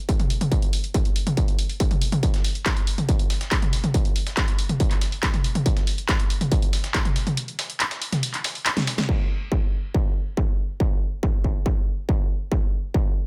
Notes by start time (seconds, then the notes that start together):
0.09 kick, closed hi-hat
0.20 closed hi-hat, mid tom
0.30 open hi-hat
0.41 closed hi-hat, mid tom
0.52 kick, closed hi-hat
0.62 closed hi-hat
0.73 open hi-hat
0.84 closed hi-hat
0.94 kick, closed hi-hat
1.05 closed hi-hat
1.16 open hi-hat
1.27 closed hi-hat, mid tom
1.37 kick, closed hi-hat
1.48 closed hi-hat
1.59 open hi-hat
1.69 open hi-hat
1.80 kick, closed hi-hat
1.91 closed hi-hat, mid tom
2.01 open hi-hat
2.12 closed hi-hat, mid tom
2.23 kick, closed hi-hat
2.34 snare, closed hi-hat
2.44 open hi-hat
2.55 closed hi-hat
2.66 kick, snare, clap, closed hi-hat
2.77 closed hi-hat
2.87 closed hi-hat, open hi-hat
2.98 closed hi-hat, mid tom
3.09 kick, closed hi-hat
3.19 closed hi-hat
3.30 snare, closed hi-hat, open hi-hat
3.41 snare, closed hi-hat
3.51 kick, snare, clap, closed hi-hat
3.62 closed hi-hat, mid tom
3.73 snare, closed hi-hat, open hi-hat
3.84 closed hi-hat, mid tom
3.94 kick, closed hi-hat
4.05 closed hi-hat
4.16 closed hi-hat, open hi-hat
4.27 snare, closed hi-hat
4.37 kick, snare, clap, closed hi-hat
4.48 closed hi-hat
4.59 closed hi-hat, open hi-hat
4.69 closed hi-hat, mid tom
4.80 kick, closed hi-hat
4.91 clap, closed hi-hat
5.01 snare, closed hi-hat, open hi-hat
5.12 open hi-hat
5.23 kick, snare, clap, closed hi-hat
5.34 closed hi-hat, mid tom
5.44 closed hi-hat, open hi-hat
5.55 closed hi-hat, mid tom
5.66 kick, closed hi-hat
5.77 snare, closed hi-hat
5.87 open hi-hat
5.98 closed hi-hat
6.09 kick, snare, clap, closed hi-hat
6.20 closed hi-hat
6.30 closed hi-hat, open hi-hat
6.41 closed hi-hat, mid tom
6.52 kick, closed hi-hat
6.62 closed hi-hat
6.73 snare, closed hi-hat, open hi-hat
6.84 snare, closed hi-hat
6.94 kick, snare, clap, closed hi-hat
7.05 closed hi-hat, mid tom
7.16 snare, closed hi-hat, open hi-hat
7.27 closed hi-hat, mid tom
7.37 closed hi-hat
7.48 closed hi-hat
7.59 snare, closed hi-hat, open hi-hat
7.70 closed hi-hat
7.80 snare, clap, closed hi-hat
7.91 snare, closed hi-hat
8.02 open hi-hat
8.12 snare, closed hi-hat, mid tom
8.23 closed hi-hat, open hi-hat
8.34 clap, closed hi-hat
8.44 snare, closed hi-hat, open hi-hat
8.55 open hi-hat
8.66 snare, clap, closed hi-hat
8.77 snare, closed hi-hat, mid tom
8.87 snare, closed hi-hat, open hi-hat
8.98 snare, closed hi-hat, mid tom
9.03 snare, closed hi-hat
9.09 kick, crash
9.52 kick
9.94 kick
10.37 kick
10.80 kick
11.23 kick
11.44 kick
11.66 kick
12.09 kick
12.52 kick
12.94 kick